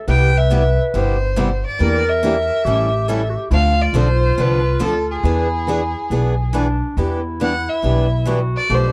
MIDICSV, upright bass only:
0, 0, Header, 1, 2, 480
1, 0, Start_track
1, 0, Tempo, 431655
1, 77, Time_signature, 4, 2, 24, 8
1, 9920, End_track
2, 0, Start_track
2, 0, Title_t, "Upright bass"
2, 0, Program_c, 0, 32
2, 84, Note_on_c, 0, 36, 92
2, 851, Note_off_c, 0, 36, 0
2, 1043, Note_on_c, 0, 31, 78
2, 1810, Note_off_c, 0, 31, 0
2, 2000, Note_on_c, 0, 40, 90
2, 2768, Note_off_c, 0, 40, 0
2, 2946, Note_on_c, 0, 33, 91
2, 3720, Note_off_c, 0, 33, 0
2, 3900, Note_on_c, 0, 38, 95
2, 4292, Note_off_c, 0, 38, 0
2, 4369, Note_on_c, 0, 35, 89
2, 4790, Note_off_c, 0, 35, 0
2, 4866, Note_on_c, 0, 36, 79
2, 5280, Note_off_c, 0, 36, 0
2, 5343, Note_on_c, 0, 38, 72
2, 5757, Note_off_c, 0, 38, 0
2, 5821, Note_on_c, 0, 40, 94
2, 6595, Note_off_c, 0, 40, 0
2, 6785, Note_on_c, 0, 35, 73
2, 7557, Note_off_c, 0, 35, 0
2, 7748, Note_on_c, 0, 40, 89
2, 8519, Note_off_c, 0, 40, 0
2, 8713, Note_on_c, 0, 35, 77
2, 9482, Note_off_c, 0, 35, 0
2, 9671, Note_on_c, 0, 35, 86
2, 9920, Note_off_c, 0, 35, 0
2, 9920, End_track
0, 0, End_of_file